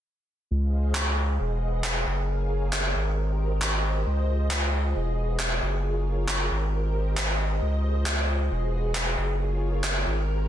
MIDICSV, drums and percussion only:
0, 0, Header, 1, 2, 480
1, 0, Start_track
1, 0, Key_signature, -5, "major"
1, 0, Tempo, 444444
1, 549, Time_signature, 4, 2, 24, 8
1, 11321, End_track
2, 0, Start_track
2, 0, Title_t, "Drums"
2, 1025, Note_on_c, 9, 39, 114
2, 1133, Note_off_c, 9, 39, 0
2, 1987, Note_on_c, 9, 39, 118
2, 2095, Note_off_c, 9, 39, 0
2, 2947, Note_on_c, 9, 39, 120
2, 3055, Note_off_c, 9, 39, 0
2, 3907, Note_on_c, 9, 39, 112
2, 4015, Note_off_c, 9, 39, 0
2, 4868, Note_on_c, 9, 39, 119
2, 4976, Note_off_c, 9, 39, 0
2, 5826, Note_on_c, 9, 39, 122
2, 5934, Note_off_c, 9, 39, 0
2, 6787, Note_on_c, 9, 39, 116
2, 6895, Note_off_c, 9, 39, 0
2, 7746, Note_on_c, 9, 39, 116
2, 7854, Note_off_c, 9, 39, 0
2, 8706, Note_on_c, 9, 39, 117
2, 8814, Note_off_c, 9, 39, 0
2, 9666, Note_on_c, 9, 39, 118
2, 9774, Note_off_c, 9, 39, 0
2, 10625, Note_on_c, 9, 39, 115
2, 10733, Note_off_c, 9, 39, 0
2, 11321, End_track
0, 0, End_of_file